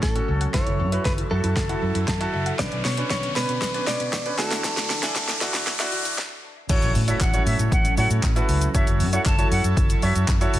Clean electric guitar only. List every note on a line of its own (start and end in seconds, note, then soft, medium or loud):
0.03 0.56 A4 medium
0.54 1.05 C#5 medium
1.05 1.12 B4 medium
1.31 2.29 A4 medium
2.59 2.84 D5 loud
2.85 3.09 C#5 loud
3.10 3.36 C#5 loud
3.36 3.87 B4 loud
3.87 4.38 D5 loud
4.38 6.14 A4 medium